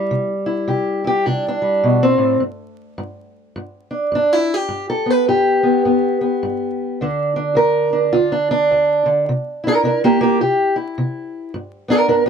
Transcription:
0.00 1.61 G3 soft
0.00 0.31 E4 loud
0.11 0.64 C3 medium
0.46 1.03 E4 soft
0.68 1.21 C3 medium
0.68 1.07 G4 medium
1.04 2.39 E4 soft
1.04 1.26 G4 medium
1.26 1.79 C3 medium
1.26 1.45 D4 medium
1.48 2.04 D4 medium
1.62 2.02 G3 soft
1.83 2.17 B2 medium
2.03 2.41 C4 medium
2.18 2.40 A2 medium
2.40 2.93 G2 medium
2.98 3.51 G2 medium
3.56 4.09 G2 medium
3.91 4.15 D4 soft
4.12 4.65 G2 medium
4.12 4.33 D4 medium
4.33 4.54 E4 loud
4.54 4.89 G4 loud
4.69 5.22 G2 medium
4.90 5.10 A4 medium
5.06 5.62 B3 soft
5.10 5.28 B4 medium
5.28 5.80 G2 medium
5.28 6.99 G4 loud
5.63 5.84 B3 soft
5.85 6.37 G2 medium
5.85 6.20 B3 soft
6.21 7.00 B3 soft
6.43 6.95 G2 medium
7.01 7.52 D2 medium
7.01 9.05 D3 soft
7.01 7.35 D4 soft
7.36 7.92 D4 soft
7.55 8.08 D2 medium
7.55 8.13 A#4 loud
7.93 8.31 D4 soft
8.13 8.66 D2 medium
8.13 8.31 F4 medium
8.32 8.50 D4 medium
8.51 9.07 D4 loud
8.71 9.22 D2 medium
9.06 9.27 D3 medium
9.29 9.80 C3 medium
9.64 9.73 D4 medium
9.64 10.75 E4 medium
9.68 9.84 A#4 medium
9.83 10.35 C3 medium
9.83 9.89 D4 medium
9.83 10.03 A#4 medium
10.04 10.20 A#3 medium
10.04 10.22 G4 loud
10.21 10.40 A#3 medium
10.21 10.40 G4 medium
10.41 10.92 C3 medium
10.41 10.75 G4 medium
10.76 11.51 E4 soft
10.98 11.49 C3 medium
11.54 12.06 G2 medium
11.88 12.25 B3 medium
11.88 11.98 D4 loud
11.88 12.08 A#4 loud
12.08 12.29 G2 medium
12.08 12.15 D4 medium
12.08 12.27 A#4 medium
12.26 12.29 B3 medium

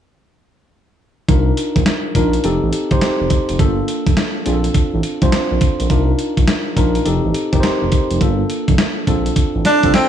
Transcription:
1.29 1.51 C2 loud
1.29 1.95 D4 medium
1.29 1.95 D#4 medium
1.29 1.96 F4 medium
1.29 1.96 A#4 medium
1.29 kick loud
1.29 closed hi-hat medium
1.57 closed hi-hat medium
1.76 1.84 A#1 medium
1.76 kick medium
1.76 closed hi-hat soft
1.86 snare loud
1.86 closed hi-hat medium
2.15 2.37 A#1 medium
2.15 2.44 D4 medium
2.15 2.43 D#4 medium
2.15 2.44 F4 medium
2.15 2.44 A#4 medium
2.15 kick medium
2.15 closed hi-hat medium
2.33 closed hi-hat medium
2.44 2.59 F1 loud
2.44 2.80 C4 medium
2.44 2.80 D#4 medium
2.44 2.81 G4 medium
2.44 2.81 A4 medium
2.44 closed hi-hat medium
2.63 2.71 A1 medium
2.73 closed hi-hat medium
2.91 2.99 G1 medium
2.91 3.44 C4 medium
2.91 3.44 D#4 medium
2.91 3.44 G4 medium
2.91 3.45 C5 medium
2.91 kick loud
2.91 closed hi-hat soft
3.01 3.09 F1 soft
3.01 snare loud
3.01 closed hi-hat medium
3.21 3.28 F1 medium
3.30 kick loud
3.30 closed hi-hat medium
3.49 3.57 F1 medium
3.49 closed hi-hat medium
3.59 3.82 G1 medium
3.59 4.26 A#3 medium
3.59 4.26 D4 medium
3.59 4.26 F4 medium
3.59 4.26 A4 medium
3.59 kick loud
3.59 closed hi-hat medium
3.88 closed hi-hat medium
4.07 4.15 F1 medium
4.07 kick medium
4.07 closed hi-hat medium
4.17 snare loud
4.17 closed hi-hat medium
4.46 4.68 A#1 medium
4.46 5.03 C4 medium
4.46 5.04 D4 medium
4.46 5.04 F4 medium
4.46 4.55 G#4 medium
4.46 closed hi-hat medium
4.53 5.07 A4 medium
4.64 closed hi-hat medium
4.74 kick medium
4.74 closed hi-hat medium
4.94 5.01 A1 medium
5.03 closed hi-hat medium
5.22 5.30 C2 medium
5.22 5.75 C4 medium
5.22 5.75 D4 medium
5.22 5.75 F4 medium
5.22 5.75 C5 medium
5.22 kick loud
5.22 closed hi-hat medium
5.32 5.40 A#1 soft
5.32 snare loud
5.32 closed hi-hat medium
5.51 5.59 A#1 medium
5.61 kick loud
5.61 closed hi-hat medium
5.80 5.88 A#1 medium
5.80 closed hi-hat medium
5.90 6.12 C2 medium
5.90 6.57 D4 medium
5.90 6.57 D#4 medium
5.90 6.57 F4 medium
5.90 6.57 A#4 medium
5.90 kick loud
5.90 closed hi-hat medium
6.19 closed hi-hat medium
6.37 6.46 A#1 medium
6.37 kick medium
6.37 closed hi-hat medium
6.48 snare loud
6.48 closed hi-hat medium
6.76 6.99 A#1 medium
6.76 7.05 D4 medium
6.76 7.04 D#4 medium
6.76 7.06 F4 medium
6.76 7.06 A#4 medium
6.76 kick medium
6.76 closed hi-hat medium
6.95 closed hi-hat medium
7.05 7.20 F1 loud
7.05 7.42 C4 medium
7.05 7.42 D#4 medium
7.05 7.42 G4 medium
7.05 7.42 A4 medium
7.05 closed hi-hat medium
7.24 7.32 A1 medium
7.34 closed hi-hat medium
7.52 7.61 G1 medium
7.52 8.05 C4 medium
7.52 8.06 D#4 medium
7.52 8.06 G4 medium
7.52 7.58 A#4 medium
7.52 kick loud
7.52 closed hi-hat medium
7.60 7.71 F1 soft
7.60 8.09 C5 medium
7.60 snare loud
7.60 closed hi-hat medium
7.82 7.90 F1 medium
7.92 kick loud
7.92 closed hi-hat medium
8.11 8.19 F1 medium
8.11 closed hi-hat medium
8.21 8.43 G1 loud
8.21 8.88 A#3 medium
8.21 8.88 D4 medium
8.21 8.88 F4 medium
8.21 8.88 A4 medium
8.21 kick loud
8.21 closed hi-hat medium
8.50 closed hi-hat medium
8.68 8.76 F1 loud
8.68 kick medium
8.68 closed hi-hat medium
8.78 snare loud
8.78 closed hi-hat medium
9.07 9.30 A#1 medium
9.07 9.65 C4 medium
9.07 9.65 D4 medium
9.07 9.65 F4 medium
9.07 9.66 A4 medium
9.07 kick medium
9.07 closed hi-hat medium
9.26 closed hi-hat medium
9.36 kick medium
9.36 closed hi-hat medium
9.55 9.63 A1 medium
9.65 9.92 D4 medium
9.65 snare medium
9.65 closed hi-hat medium
9.83 9.92 C2 medium
9.83 10.09 C4 medium
9.83 10.09 D4 medium
9.83 10.09 F4 medium
9.83 10.09 A4 medium
9.83 kick medium
9.83 closed hi-hat medium
9.94 10.02 A#1 soft
9.94 10.09 C4 medium
9.94 snare loud
9.94 closed hi-hat medium

